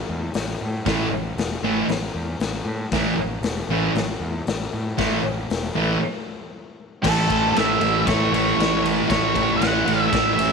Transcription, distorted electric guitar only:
0.86 1.07 A2 medium
0.86 1.07 E3 medium
0.86 1.07 A3 loud
1.64 1.84 A2 medium
1.64 1.85 E3 medium
1.64 1.85 A3 loud
2.92 3.13 A2 medium
2.92 3.13 E3 medium
2.92 3.14 A3 loud
3.70 3.91 A2 loud
3.70 3.91 E3 loud
3.70 3.91 A3 loud
4.98 5.19 A2 medium
4.98 5.19 E3 medium
4.98 5.19 A3 loud
5.75 5.96 A2 medium
5.75 5.97 E3 medium
5.75 5.97 A3 loud
7.03 7.54 A2 medium
7.03 7.31 E3 loud
7.03 7.27 A3 medium
7.28 7.56 E3 medium
7.28 7.58 A3 medium
7.55 7.83 A2 medium
7.55 7.81 E3 medium
7.55 7.80 A3 medium
7.80 8.05 A2 medium
7.80 8.06 E3 medium
7.80 8.09 A3 medium
8.06 8.56 A2 medium
8.06 8.34 E3 medium
8.06 8.32 A3 medium
8.32 8.57 E3 medium
8.32 8.60 A3 medium
8.57 9.06 A2 medium
8.57 8.84 E3 loud
8.57 8.82 A3 medium
8.82 9.09 E3 medium
8.82 9.11 A3 medium
9.07 9.58 A2 loud
9.07 9.35 E3 medium
9.07 9.33 A3 loud
9.33 9.60 E3 medium
9.33 9.63 A3 medium
9.59 9.87 A2 medium
9.59 9.86 E3 medium
9.59 9.84 A3 medium
9.86 10.10 A2 medium
9.86 10.12 E3 medium
9.86 10.13 A3 loud
10.11 10.52 A2 medium
10.11 10.38 E3 medium
10.11 10.35 A3 medium
10.36 10.52 E3 medium
10.36 10.52 A3 medium

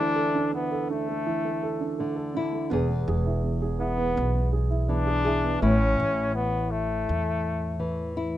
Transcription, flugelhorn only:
0.00 0.53 D4 loud
0.54 0.87 B3 medium
0.91 2.32 A3 medium
3.80 4.49 B3 loud
4.90 5.59 D4 loud
5.62 6.31 C#4 loud
6.34 6.72 B3 loud
6.71 8.17 A3 medium

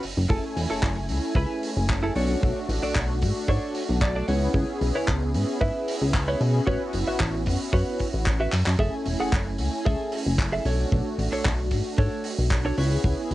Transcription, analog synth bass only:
0.03 0.15 F#1 soft
0.17 0.27 F#1 loud
0.30 0.40 F#1 loud
0.56 0.67 E1 medium
0.71 0.81 F#1 soft
0.83 1.11 F#1 medium
1.10 1.20 C#2 medium
1.35 1.46 C#2 medium
1.77 2.11 F#1 medium
2.16 2.36 B1 medium
2.43 2.53 B1 medium
2.69 2.79 A1 medium
2.95 3.24 B1 medium
3.22 3.32 G#2 medium
3.48 3.59 G#2 medium
3.89 4.23 B1 loud
4.28 4.48 C#2 medium
4.54 4.65 C#2 loud
4.81 4.92 B1 medium
5.08 5.36 C#2 medium
5.35 5.45 G#2 medium
5.61 5.71 G#2 medium
6.02 6.35 C#2 loud
6.41 6.60 B2 medium
6.67 6.78 A1 medium
6.94 7.04 F#1 medium
7.20 7.48 A1 medium
7.47 7.57 F#2 medium
7.73 7.83 F#2 medium
8.14 8.48 A1 loud
8.53 8.63 F#2 medium
8.67 8.76 F#2 medium
8.79 8.90 F#1 loud
9.06 9.16 E1 medium
9.20 9.30 F#1 soft
9.33 9.60 F#1 medium
9.59 9.69 C#2 medium
9.86 9.96 C#2 medium
10.26 10.60 F#1 loud
10.65 10.85 B1 medium
10.92 11.02 B1 loud
11.18 11.29 A1 medium
11.45 11.73 B1 medium
11.71 11.82 G#2 medium
11.98 12.08 G#2 medium
12.39 12.72 B1 loud
12.78 12.98 C#2 medium
13.04 13.15 C#2 medium
13.31 13.34 B1 medium

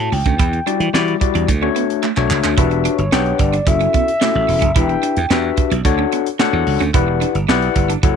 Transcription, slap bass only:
0.12 0.22 C#2 medium
0.26 0.35 D2 medium
0.39 0.59 E2 medium
0.80 0.90 E3 loud
0.94 1.13 E3 loud
1.35 1.45 E2 medium
1.49 1.68 D2 loud
2.17 2.27 B1 medium
2.30 2.40 C#2 medium
2.44 2.54 D2 medium
2.58 2.87 E1 loud
2.98 3.08 G1 loud
3.12 3.32 B1 loud
3.39 3.59 G1 medium
3.67 3.86 F#1 loud
4.35 4.45 A1 medium
4.49 4.58 E1 loud
4.62 4.72 F#1 medium
4.76 4.95 E1 medium
5.17 5.27 E2 medium
5.30 5.50 E2 loud
5.71 5.81 B1 medium
5.85 6.04 D2 loud
6.53 6.63 E2 medium
6.67 6.76 C#2 medium
6.80 6.90 D2 medium
6.94 7.23 E1 medium
7.35 7.45 G1 loud
7.48 7.68 B1 loud
7.76 7.95 G1 medium
8.03 8.16 F#1 loud

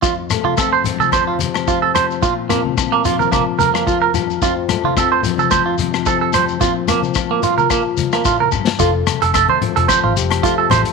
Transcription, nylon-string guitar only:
0.02 2.22 F2 medium
0.02 muted nylon-string guitar stroke medium
0.32 2.20 A3 medium
0.58 1.95 C4 medium
0.86 3.04 F3 medium
1.40 2.19 C3 medium
1.69 2.22 C5 medium
1.96 2.52 C4 medium
2.22 3.59 A#2 medium
2.22 2.79 F4 medium
2.52 4.42 C4 medium
2.79 muted nylon-string guitar stroke medium
3.05 5.24 F3 medium
3.60 4.40 F2 medium
3.88 4.14 F4 medium
4.15 6.07 F4 medium
4.41 6.61 F2 medium
4.41 4.97 C4 medium
4.69 6.58 A3 medium
4.97 6.35 C4 medium
5.25 6.61 F3 medium
5.79 6.58 C3 medium
6.07 6.63 C5 medium
6.35 6.61 C4 soft
6.61 7.98 A#2 medium
6.61 7.42 F3 medium
6.61 6.88 C4 medium
6.61 7.15 F4 medium
6.89 8.77 C4 soft
7.16 8.79 F4 medium
7.43 8.77 F3 medium
7.98 8.24 F2 soft
8.24 8.51 A2 medium
8.52 8.79 G2 medium
8.79 10.93 F2 medium
8.79 9.61 A4 medium
9.35 10.43 A3 medium
9.62 10.93 F3 medium
9.62 10.17 C5 medium
9.89 10.93 C4 medium
10.16 10.93 C3 medium
10.16 10.93 G4 medium
10.45 10.93 A3 medium

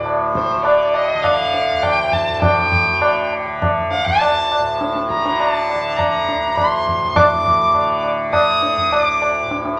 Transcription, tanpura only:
0.00 1.70 D2 medium
0.00 2.28 A2 medium
0.00 0.55 D3 medium
0.55 1.14 D3 medium
1.14 2.86 D3 medium
1.71 4.01 D2 medium
2.28 4.59 A2 medium
2.86 3.45 D3 medium
3.45 5.17 D3 medium
4.02 6.31 D2 medium
4.59 6.88 A2 medium
5.17 5.74 D3 medium
5.74 7.71 D3 medium
6.32 8.87 D2 medium
6.88 7.14 A2 medium
7.14 9.42 A2 medium
7.71 8.29 D3 medium
8.29 9.80 D3 medium
8.87 9.80 D2 medium
9.42 9.80 A2 medium

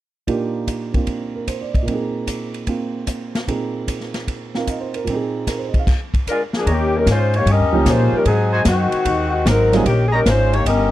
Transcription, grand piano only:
0.27 1.81 A#2 soft
0.27 0.91 A#3 soft
0.27 0.94 D4 soft
0.27 1.88 D#4 soft
0.27 0.95 F4 soft
0.27 1.88 G4 medium
0.93 1.84 A#3 soft
0.93 1.87 C4 soft
0.93 1.88 D4 soft
0.93 1.88 F4 soft
1.35 1.56 A#4 soft
1.48 1.73 C5 soft
1.61 1.82 D5 soft
1.74 1.95 D#5 soft
1.82 3.45 A#2 soft
1.82 2.65 A#3 soft
1.88 2.67 C4 soft
1.88 3.47 D#4 soft
1.94 3.47 G#4 soft
2.66 3.46 A#3 soft
2.66 3.47 C4 soft
2.66 3.48 F4 soft
3.48 5.03 A#2 soft
3.48 5.05 A#3 soft
3.48 4.53 C4 soft
3.48 4.54 D#4 soft
3.48 5.08 G#4 soft
4.55 5.07 C4 soft
4.55 5.08 D#4 soft
4.55 5.08 F4 soft
4.55 4.94 A#4 soft
4.55 4.75 F5 soft
4.68 4.92 D#5 soft
4.80 5.01 C5 soft
4.95 5.15 A#4 soft
5.04 5.85 A#2 soft
5.04 5.87 A#3 soft
5.10 5.88 C4 soft
5.10 5.89 D#4 soft
5.15 5.91 G#4 medium
5.48 5.66 A#4 soft
5.58 5.75 C5 soft
5.69 5.80 D#5 soft
5.79 5.92 F5 soft
7.73 8.23 F3 medium
7.73 8.23 A#3 medium
7.73 8.24 C#4 medium
7.73 8.24 D#4 medium
7.73 8.24 G4 medium
9.72 9.84 G3 medium
9.72 9.84 A#3 medium
9.72 9.84 C#4 medium
9.72 9.84 D#4 medium
9.72 9.85 F4 medium

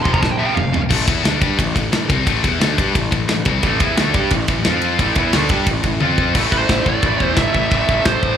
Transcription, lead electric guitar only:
0.03 0.13 C6 loud
0.13 0.21 A#5 medium
0.21 0.30 A5 medium
0.29 0.38 G5 medium
0.38 0.46 E5 medium
0.47 0.55 G5 loud
0.55 0.80 F5 medium
6.52 6.88 C5 loud
6.86 7.34 D5 loud
7.37 7.52 E5 medium
7.53 7.70 E5 loud
7.71 8.06 E5 loud
8.05 8.37 C5 loud

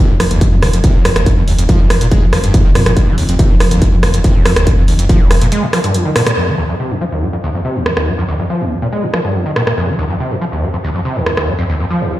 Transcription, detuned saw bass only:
0.10 0.18 F1 medium
0.20 0.29 F1 loud
0.31 0.39 F1 loud
0.52 0.61 F2 medium
0.63 0.71 F1 loud
0.73 0.82 F1 medium
0.95 1.03 F1 medium
1.05 1.14 F2 loud
1.16 1.25 F1 medium
1.37 1.46 F1 medium
1.48 1.57 F1 loud
1.59 1.67 F1 medium
1.80 1.88 F1 medium
1.90 1.99 F1 loud
2.01 2.10 F1 medium
2.22 2.31 F2 medium
2.33 2.42 F1 loud
2.44 2.52 F1 medium
2.65 2.73 F1 medium
2.75 2.84 F2 loud
2.86 2.95 F1 medium
3.08 3.16 F1 medium
3.18 3.27 F1 loud
3.29 3.37 F1 medium
3.50 3.59 F1 medium
3.61 3.69 F1 loud
3.71 3.80 F1 medium
3.93 4.01 F2 medium
4.03 4.12 F1 loud
4.14 4.22 F1 medium
4.35 4.44 F1 medium
4.46 4.54 F2 loud
4.56 4.65 F1 medium
4.78 4.86 F1 medium
4.88 4.97 F1 loud
4.99 5.08 F1 medium
5.20 5.29 F1 medium
5.31 5.40 F1 loud
5.42 5.50 F1 medium

